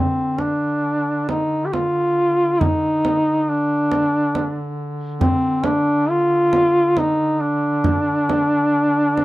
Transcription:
Already playing: D3 C4
0.39 D4, frame drum
1.29 D#4, frame drum
1.65 G4
1.73 F4, frame drum
2.61 D#4, frame drum
3.05 frame drum
3.49 D4
3.92 frame drum
4.35 frame drum
5.21 C4, frame drum
5.64 D4, frame drum
6.10 F4
6.53 frame drum
6.97 D#4, frame drum
7.41 D4
7.84 frame drum
8.30 frame drum
9.18 frame drum

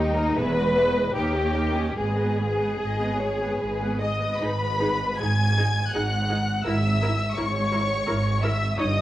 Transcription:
Already playing: D#2 G3 D#4 G4 G5
0.16 A#3 A#4 D#5
0.36 E1 E2 B3 G#4 B4 E5
0.56 G#3 B4 D#5
0.75 B3 G#4 E5
0.95 G#3 B4 D#5
1.14 D#2 D#4 G4 A#4 C#5
1.34 C#4 G4 D#5
1.54 D#4 A#4 C#5
1.76 C#4 G4 D#5
1.97 G#1 G#2 G#3 G#4 B4
2.18 B3 B4 D#5
2.39 G#3 G#4 B4
2.59 B3 B4 D#5
2.79 G#1 G#2 G#3 G#4 D#5
3.01 B3 B4
3.19 G#3 G#4 C#5
3.42 B3 B4
3.60 G#1 G#2 G#3 G#4 B4
3.82 B3 B4
4.01 G#3 G#4 D#5 D#6
4.22 B3 B4
4.39 G#1 G#2 D#4 G#4 B4 B5
4.80 D#4 G#4
5.19 G#1 G#2 D#4 G#4 G#5 G#6
5.57 D#4 G#4
5.94 G#1 G#2 D#4 G#4 F#5 F#6
6.30 D#4 G#4
6.66 G#1 G#2 E4 A#4 E5 E6
7.02 E4 A#4
7.36 G#1 G#2 E4 A#4 C#5 C#6
7.72 E4 A#4
8.07 G#1 G#2 E4 A#4
8.42 E4 A#4 E5 E6
8.78 G1 G2 D#4 C#5 D#5 D#6

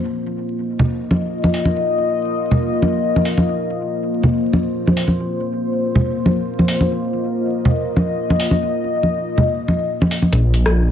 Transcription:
Already playing: A#3 F4
0.04 D#5
0.79 low conga
1.11 high conga
1.44 high conga
1.54 open hi-hat
1.65 high conga
2.51 low conga
2.82 high conga
3.16 high conga
3.25 open hi-hat
3.38 high conga
3.47 C5
4.23 low conga
4.53 high conga
4.87 high conga
4.97 open hi-hat
5.08 high conga
5.95 low conga
6.26 high conga
6.59 high conga
6.68 open hi-hat
6.81 high conga
6.90 D#5
7.65 low conga
7.97 high conga
8.30 high conga
8.40 open hi-hat
8.51 high conga
9.03 high conga
9.38 low conga
9.68 high conga
10.02 high conga
10.11 open hi-hat
10.22 high conga
10.32 A#1 A#3 F4 C5, kick
10.54 closed hi-hat
10.66 cross-stick

